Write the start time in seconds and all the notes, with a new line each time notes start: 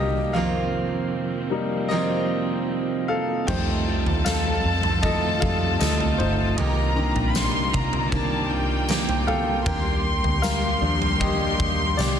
Already playing: C2 D#3 G3 A#3 D#4 G4 A4 A#4 D5 D#5 F5 G5
0.33 F2 C3 D#3 A#3 C4 A#4 F5
0.37 F3 F4
1.50 G3 A#3 D#4
1.89 F2 C3 D#3 A#3 A#4 D#5
1.93 C4 F4
3.08 A4 F5
3.47 F2 C3 D#3 F3 G3 A3 C4 D#4 F4 A4 C5 G5 A5, kick, floor tom, crash
3.87 D#3 A3 D#4 F4
4.06 D#2, floor tom
4.24 A4 F5, snare, tambourine
4.65 F2
4.83 floor tom
5.02 D#3 A3 D#4 F4 A4 D#5, kick, floor tom
5.40 F2 G3 A3 D#4 A4 F5, kick
5.79 D2 A3 D#4 A4 D#5, snare, tambourine
5.84 F4
6.00 floor tom
6.18 G1 D#4 C5, floor tom
6.56 C2 C3 D#3 G3 A#3 C4 G4 D#5 A#5, floor tom
6.95 D3 D#3 A#3 C4 G4
7.16 A#1, floor tom
7.30 B5
7.35 C6, snare, tambourine
7.74 C2 A#5, kick, floor tom
7.93 floor tom
8.11 C2 D#3 A#3 C4 D4 G4 A5, kick, floor tom
8.50 G5
8.88 D#3 A#3 C4 G4, snare, tambourine
9.09 floor tom
9.27 A4 F5, floor tom
9.66 D#2 G3 A#3 D4 G4 A#4 G5 C6, kick, floor tom
10.24 D2, floor tom
10.42 A#4 F5, snare, tambourine
10.80 D#2 F3 G3 D4
11.02 floor tom
11.20 D#3 A#3 D4 G4 D#5, kick, floor tom
11.60 D#2, kick
11.97 C2 D#3 A#3 D4 G4 D5, snare, tambourine